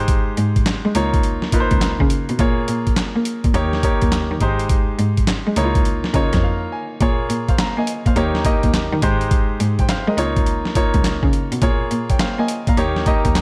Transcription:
Already playing: cello G#2, grand piano G#3 D#4 G4 C5
0.08 kick, closed hi-hat
0.37 cello G#2, closed hi-hat
0.56 kick, closed hi-hat
0.66 cello G#3, snare, clap, closed hi-hat
0.85 cello G#3
0.95 cello C#2, grand piano A#3 D#4 F4 C#5, closed hi-hat
1.14 kick, closed hi-hat
1.23 closed hi-hat
1.42 snare
1.52 grand piano A#3 D#4 F4 B4, kick, closed hi-hat
1.60 grand piano C5
1.71 cello C#2, kick, closed hi-hat
1.81 snare, clap, closed hi-hat
2.00 cello C#3, kick
2.10 closed hi-hat
2.29 cello B2, closed hi-hat
2.39 cello A#2, grand piano A#3 F4 G#4 C#5, kick, closed hi-hat
2.68 cello A#2, closed hi-hat
2.87 kick, closed hi-hat
2.96 cello A#3, snare, clap, closed hi-hat
3.16 cello A#3
3.25 closed hi-hat
3.44 cello A#2, kick, closed hi-hat
3.54 cello D#2, grand piano A#3 D#4 G4 C#5, closed hi-hat
3.73 snare
3.83 grand piano A#3 D#4 G4 C#5, kick, closed hi-hat
4.02 cello D#2, kick, closed hi-hat
4.12 snare, clap, closed hi-hat
4.31 cello D#3
4.41 cello G#2, grand piano G#3 D#4 G4 C5, kick, closed hi-hat
4.59 closed hi-hat
4.69 kick, closed hi-hat
4.99 cello G#2, closed hi-hat
5.17 kick, closed hi-hat
5.27 cello G#3, snare, clap, closed hi-hat
5.47 cello G#3
5.56 cello C#2, grand piano A#3 D#4 E4 C#5, closed hi-hat
5.64 grand piano F4
5.75 kick, closed hi-hat
5.85 closed hi-hat
6.04 snare
6.14 cello C#3, grand piano A#3 D#4 F4 C#5 D#5, kick, closed hi-hat
6.33 cello F2, kick, snare, closed hi-hat
6.44 grand piano F5
6.72 grand piano G#5
7.01 cello A#2, grand piano A#3 F4 G#4 C#5, kick, closed hi-hat
7.30 cello A#2, closed hi-hat
7.49 grand piano C5 F5, kick, closed hi-hat
7.58 cello A#3, grand piano F5 A#5, snare, clap, closed hi-hat
7.78 cello A#3, grand piano D#5 G#5
7.87 closed hi-hat
8.06 cello A#2, grand piano C5 F5, kick, closed hi-hat
8.16 cello D#2, grand piano A#3 D#4 G4 C#5, closed hi-hat
8.35 snare
8.45 grand piano A#3 D#4 G4 D#5, kick, closed hi-hat
8.63 cello D#2, kick, closed hi-hat
8.74 snare, clap, closed hi-hat
8.93 cello D#3
9.02 cello G#2, grand piano G#3 D#4 G4 C5, kick, closed hi-hat
9.21 closed hi-hat
9.31 kick, closed hi-hat
9.60 cello G#2, closed hi-hat
9.79 grand piano C5 G5, kick, closed hi-hat
9.89 cello G#3, grand piano C5 F5, snare, clap, closed hi-hat
10.08 cello G#3, grand piano A#4 D#5
10.17 cello C#2, grand piano A#3 D#4 F4 C#5, closed hi-hat
10.36 kick, closed hi-hat
10.46 closed hi-hat
10.65 snare
10.75 grand piano A#3 D#4 F4 C#5, kick, closed hi-hat
10.94 cello C#2, kick, closed hi-hat
11.04 snare, clap, closed hi-hat
11.23 cello C#3, kick
11.33 closed hi-hat
11.52 cello B2, closed hi-hat
11.62 cello A#2, grand piano A#3 F4 G#4 C#5, kick, closed hi-hat
11.91 cello A#2, closed hi-hat
12.10 grand piano C#5 G5, kick, closed hi-hat
12.19 cello A#3, grand piano C5 F5, snare, clap, closed hi-hat
12.39 cello A#3, grand piano D#5 G#5
12.48 closed hi-hat
12.67 cello A#2, grand piano F5 A#5, kick, closed hi-hat
12.77 cello D#2, grand piano A#3 D#4 G4 C#5, closed hi-hat
12.96 snare
13.06 grand piano A#3 D#4 G4 D#5, kick, closed hi-hat
13.25 cello D#2, kick, closed hi-hat
13.35 snare, clap, closed hi-hat

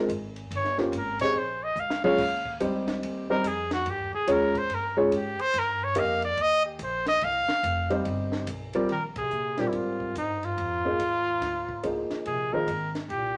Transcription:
0.08 upright bass G#1, hi-hat pedal, ride
0.36 ride
0.51 upright bass G1, ride
0.56 trumpet C#5
0.65 snare
0.78 grand piano A#3 C#4 F4 G4 C5, trumpet F4, snare
0.92 upright bass G#1, hi-hat pedal, ride
0.97 trumpet A#4
1.19 grand piano C4 D#4 G4 G#4 C#5, trumpet C#5, kick, ride
1.35 upright bass A#1, trumpet C5
1.63 trumpet D#5
1.76 upright bass C#2, hi-hat pedal
1.80 trumpet F5
1.90 snare
2.04 grand piano G#3 C#4 F4 G#4 C#5, trumpet F5, mid tom
2.18 upright bass D#2, kick, crash
2.45 kick
2.60 upright bass C#2, grand piano G3 C4 D#4 G4 C5, hi-hat pedal, ride
2.88 snare, ride
3.03 upright bass D#2, ride
3.30 grand piano G3 C4 D#4 G4 C5, trumpet A#4
3.44 upright bass F2, trumpet G#4, hi-hat pedal, ride
3.71 trumpet F#4, snare, ride
3.86 upright bass G2, ride
3.90 trumpet G4
4.00 upright bass D#2
4.13 upright bass C2, trumpet G#4
4.27 upright bass D#2, grand piano G#3 C#4 F4 G#4 C#5, hi-hat pedal, ride
4.32 trumpet A#4
4.55 trumpet C5, kick, ride
4.69 upright bass G2, ride
4.74 trumpet A#4
4.97 grand piano G#3 C#4 F4 G#4 C#5, trumpet D#4
5.12 upright bass G#2, trumpet G4, hi-hat pedal, ride
5.39 trumpet C5, muted upright bass stroke, ride
5.54 upright bass G2, ride
5.59 trumpet A#4
5.84 trumpet C#5
5.95 upright bass F2, grand piano A#3 D#4 G4 A#4 D#5, hi-hat pedal, ride
5.99 trumpet F5
6.22 trumpet D5, ride
6.37 upright bass D#2, ride
6.41 trumpet D#5
6.66 trumpet G4
6.79 upright bass A#1, trumpet C5, hi-hat pedal, ride
7.06 trumpet D#5, snare, ride
7.21 upright bass C2, trumpet F5, ride
7.48 muted upright bass stroke, snare
7.63 upright bass F1, hi-hat pedal, ride
7.90 grand piano G3 C4 D#4 G4 C5, ride
8.05 upright bass G1, ride
8.32 snare
8.46 upright bass B1, hi-hat pedal, ride
8.73 grand piano G3 C4 F4 A#4 D5, ride
8.89 upright bass A#1, bass clarinet D#3, trumpet A#4, ride
9.16 bass clarinet C3, trumpet G#4, kick, ride
9.31 upright bass A#2, hi-hat pedal
9.57 bass clarinet A#2, grand piano G3 C4 F4 A#4 D5, trumpet G4, muted upright bass stroke, snare, ride
9.68 bass clarinet G2, trumpet E4
9.73 upright bass G#2, bass clarinet G#2, trumpet F4, ride
10.00 kick
10.15 upright bass G2, bass clarinet G#2, trumpet D#4, hi-hat pedal, ride
10.43 bass clarinet G#2, trumpet F4, ride
10.57 upright bass F2, ride
10.85 grand piano F3 A#3 D#4 G#4 C5
10.99 upright bass D#2, hi-hat pedal, ride
11.41 upright bass D2, snare, ride
11.69 kick
11.83 upright bass C2, grand piano F3 A#3 D#4 G#4 C5, hi-hat pedal, ride
12.10 muted upright bass stroke, snare, ride
12.26 upright bass A#1, bass clarinet C3, trumpet G#4, ride
12.53 bass clarinet D#3, grand piano F3 A#3 D#4 G#4 C5, trumpet A#4
12.67 upright bass G#1, hi-hat pedal, ride
12.95 snare, ride
13.09 upright bass C2, bass clarinet A#2, trumpet G4, ride

